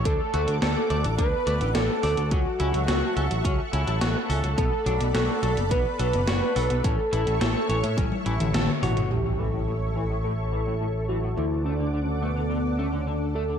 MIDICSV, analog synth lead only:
0, 0, Header, 1, 2, 480
1, 0, Start_track
1, 0, Key_signature, 2, "major"
1, 0, Tempo, 566038
1, 44, Time_signature, 4, 2, 24, 8
1, 11522, End_track
2, 0, Start_track
2, 0, Title_t, "Analog synth lead"
2, 0, Program_c, 0, 81
2, 45, Note_on_c, 0, 69, 119
2, 491, Note_off_c, 0, 69, 0
2, 521, Note_on_c, 0, 69, 104
2, 969, Note_off_c, 0, 69, 0
2, 998, Note_on_c, 0, 71, 121
2, 1477, Note_on_c, 0, 69, 109
2, 1490, Note_off_c, 0, 71, 0
2, 1960, Note_on_c, 0, 66, 108
2, 1973, Note_off_c, 0, 69, 0
2, 3403, Note_off_c, 0, 66, 0
2, 3882, Note_on_c, 0, 69, 119
2, 4330, Note_off_c, 0, 69, 0
2, 4364, Note_on_c, 0, 69, 107
2, 4841, Note_on_c, 0, 71, 117
2, 4854, Note_off_c, 0, 69, 0
2, 5077, Note_off_c, 0, 71, 0
2, 5082, Note_on_c, 0, 71, 124
2, 5801, Note_on_c, 0, 69, 119
2, 5814, Note_off_c, 0, 71, 0
2, 7243, Note_off_c, 0, 69, 0
2, 7484, Note_on_c, 0, 66, 101
2, 7721, Note_on_c, 0, 67, 104
2, 7734, Note_off_c, 0, 66, 0
2, 7964, Note_on_c, 0, 69, 106
2, 7976, Note_off_c, 0, 67, 0
2, 8678, Note_off_c, 0, 69, 0
2, 8683, Note_on_c, 0, 69, 104
2, 9370, Note_off_c, 0, 69, 0
2, 9403, Note_on_c, 0, 66, 93
2, 9627, Note_off_c, 0, 66, 0
2, 9641, Note_on_c, 0, 64, 103
2, 9866, Note_off_c, 0, 64, 0
2, 9879, Note_on_c, 0, 62, 98
2, 10201, Note_off_c, 0, 62, 0
2, 10201, Note_on_c, 0, 61, 98
2, 10328, Note_off_c, 0, 61, 0
2, 10362, Note_on_c, 0, 59, 94
2, 10843, Note_on_c, 0, 61, 96
2, 10855, Note_off_c, 0, 59, 0
2, 11084, Note_on_c, 0, 62, 91
2, 11096, Note_off_c, 0, 61, 0
2, 11317, Note_off_c, 0, 62, 0
2, 11322, Note_on_c, 0, 69, 104
2, 11522, Note_off_c, 0, 69, 0
2, 11522, End_track
0, 0, End_of_file